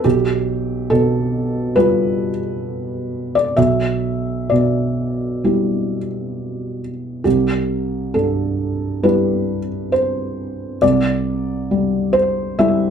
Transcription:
0.04 B1 G4
0.90 B2 A4
1.76 G3 F4 G4 B4
3.35 D5
3.57 B1 E5
4.50 B2 D5
5.44 G3 E4 G4
7.24 C2 G4
8.14 G2 A4
9.03 G3 E4 G4 B4
9.92 C5
10.82 C2 D5
11.71 G3
12.13 C5
12.59 G3 E4 G4 E5

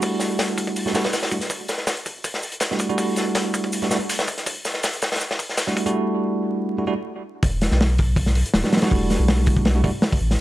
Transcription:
Already playing: G3 A3 D4 E4 F#4
0.02 kick, open hi-hat, shaker
0.19 snare, open hi-hat, shaker
0.39 snare, open hi-hat
0.58 kick, open hi-hat, shaker
0.67 kick
0.76 open hi-hat, shaker
0.86 G3 A3 D4 E4 F#4, snare
0.94 G3 A3 D4 E4 F#4, snare, open hi-hat, shaker
1.04 snare, open hi-hat
1.13 snare, open hi-hat, shaker
1.23 snare, open hi-hat
1.32 G3 A3 D4 E4 F#4, kick, open hi-hat, shaker
1.41 snare, closed hi-hat
1.50 kick, open hi-hat, shaker
1.68 snare, open hi-hat, shaker
1.78 snare
1.87 snare, open hi-hat, shaker
1.97 closed hi-hat
2.06 kick, open hi-hat, shaker
2.24 kick, open hi-hat, shaker
2.34 snare
2.43 open hi-hat, shaker
2.52 closed hi-hat
2.60 snare, open hi-hat, shaker
2.71 G3 A3 D4 E4 F#4, snare
2.79 kick, snare, open hi-hat, shaker
2.89 G3 A3 D4 E4 F#4, closed hi-hat
2.98 kick, open hi-hat, shaker
3.16 snare, open hi-hat, shaker
3.35 snare, open hi-hat
3.54 kick, open hi-hat, shaker
3.64 kick
3.72 open hi-hat, shaker
3.82 G3 A3 D4 E4 F#4, snare
3.91 G3 A3 D4 E4 F#4, snare, open hi-hat, shaker
4.09 snare, open hi-hat, shaker
4.19 snare
4.27 kick, open hi-hat, shaker
4.37 snare, closed hi-hat
4.46 kick, open hi-hat, shaker
4.65 snare, open hi-hat, shaker
4.74 snare
4.83 snare, open hi-hat, shaker
4.93 closed hi-hat
5.02 snare, open hi-hat, shaker
5.12 snare, open hi-hat
5.16 snare, open hi-hat
5.20 snare, shaker
5.31 snare
5.39 kick, open hi-hat, shaker
5.49 snare
5.57 snare, open hi-hat, shaker
5.67 G3 A3 D4 E4 F#4, snare
5.77 kick, open hi-hat
5.86 G3 A3 D4 E4 F#4, closed hi-hat
6.78 G3 A3 D4 E4 F#4
6.87 G3 A3 D4 E4 F#4
7.43 E1, kick, open hi-hat
7.61 snare, open hi-hat
7.71 B1, snare
7.81 snare, open hi-hat
7.98 kick, open hi-hat
8.16 kick, open hi-hat
8.26 snare
8.35 open hi-hat
8.46 closed hi-hat
8.54 D1, snare, open hi-hat
8.64 G3 A3 D4 E4 F#4, snare
8.73 snare, open hi-hat
8.77 snare, open hi-hat
8.82 G3 A3 D4 E4 F#4, snare, open hi-hat
8.91 E1, kick, open hi-hat
9.10 snare, open hi-hat
9.19 B1
9.28 snare, open hi-hat
9.46 kick, open hi-hat
9.57 kick
9.65 snare, open hi-hat
9.75 G3 A3 D4 E4 F#4
9.84 G3 A3 D4 E4 F#4, kick, open hi-hat
10.02 snare, open hi-hat
10.13 kick, open hi-hat
10.21 A1
10.31 snare, open hi-hat

